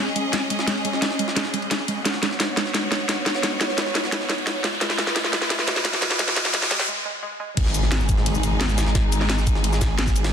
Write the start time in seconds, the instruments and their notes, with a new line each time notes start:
Already playing: string section C#4 G#4 D#5, riser
0.16 synth arpeggio sound G#3, closed hi-hat, ride
0.33 synth arpeggio sound G#3, snare, closed hi-hat, ride
0.50 synth arpeggio sound G#3, closed hi-hat, ride
0.59 snare
0.67 synth arpeggio sound G#3, snare, closed hi-hat, ride
0.85 synth arpeggio sound G#3, closed hi-hat, ride
0.93 snare
1.02 synth arpeggio sound G#3, snare, closed hi-hat, ride
1.11 snare
1.19 synth arpeggio sound G#3, closed hi-hat, ride
1.28 snare
1.36 synth arpeggio sound G#3, snare, closed hi-hat, ride
1.45 snare
1.54 synth arpeggio sound G#3, closed hi-hat, ride
1.62 ride
1.71 synth arpeggio sound G#3, snare, closed hi-hat, ride
1.88 synth arpeggio sound G#3, closed hi-hat, ride
2.05 synth arpeggio sound G#3, string section B3 F#4 C#5, snare, closed hi-hat, ride
2.14 snare
2.23 synth arpeggio sound G#3, snare, closed hi-hat, ride
2.31 snare
2.40 synth arpeggio sound G#3, snare, closed hi-hat, ride
2.57 synth arpeggio sound G#3, snare, closed hi-hat, ride
2.66 snare
2.74 synth arpeggio sound G#3, snare, closed hi-hat, ride
2.92 synth arpeggio sound G#3, snare, closed hi-hat, ride
3.09 synth arpeggio sound G#3, snare, closed hi-hat, ride
3.26 synth arpeggio sound G#3, snare, closed hi-hat, ride
3.35 snare
3.43 synth arpeggio sound G#3, snare, closed hi-hat, ride
3.61 synth arpeggio sound G#3, snare, closed hi-hat, ride
3.69 snare
3.78 synth arpeggio sound G#3, snare, closed hi-hat, ride
3.86 snare
3.95 synth arpeggio sound G#3, snare, closed hi-hat, ride
4.04 snare
4.12 synth arpeggio sound G#3, snare, closed hi-hat, ride
4.21 snare
4.29 synth arpeggio sound G#3, snare, closed hi-hat, ride
4.38 ride
4.47 synth arpeggio sound G#3, snare, closed hi-hat, ride
4.64 synth arpeggio sound G#3, snare, closed hi-hat, ride
4.73 snare
4.81 synth arpeggio sound G#3, string section A3 E4 B4, snare, closed hi-hat, ride
4.90 snare
4.98 synth arpeggio sound G#3, snare, closed hi-hat, ride
5.07 snare
5.16 synth arpeggio sound G#3, snare, closed hi-hat, ride
5.24 snare
5.33 synth arpeggio sound G#3, snare, closed hi-hat, ride
5.42 snare
5.50 synth arpeggio sound G#3, snare, closed hi-hat, ride
5.59 snare
5.67 synth arpeggio sound G#3, snare, closed hi-hat, ride
5.76 snare
5.85 synth arpeggio sound G#3, snare, closed hi-hat, ride
5.93 snare
6.02 synth arpeggio sound G#3, snare, closed hi-hat, ride
6.11 snare
6.19 synth arpeggio sound G#3, snare, closed hi-hat, ride
6.28 snare
6.36 synth arpeggio sound G#3, snare, closed hi-hat, ride
6.45 snare
6.54 synth arpeggio sound G#3, snare, closed hi-hat, ride
6.62 snare
6.71 synth arpeggio sound G#3, snare, closed hi-hat, ride
6.80 snare
6.88 synth arpeggio sound G#3
7.05 synth arpeggio sound G#3
7.23 synth arpeggio sound G#3
7.40 synth arpeggio sound G#3
7.57 detuned saw bass G#1, string section G#3 D#4 G#4, kick, closed hi-hat, crash, ride, impact
7.66 snare
7.74 closed hi-hat, ride, cabasa
7.83 snare
7.92 snare, closed hi-hat, ride
8.00 cabasa
8.09 kick, closed hi-hat, ride, cabasa
8.18 snare
8.26 closed hi-hat, ride
8.35 cabasa
8.43 closed hi-hat, ride, cabasa
8.61 snare, closed hi-hat, ride
8.69 cabasa
8.78 snare, closed hi-hat, ride, cabasa
8.87 snare
8.95 detuned saw bass G#1, kick, snare, closed hi-hat, ride
9.12 closed hi-hat, ride, cabasa
9.21 snare
9.30 snare, closed hi-hat, ride
9.38 snare, cabasa
9.47 kick, closed hi-hat, ride, cabasa
9.55 snare
9.64 closed hi-hat, ride
9.73 snare, cabasa
9.81 kick, snare, closed hi-hat, ride, cabasa
9.99 snare, closed hi-hat, ride
10.07 kick, snare, cabasa
10.16 closed hi-hat, ride, cabasa
10.24 snare, ride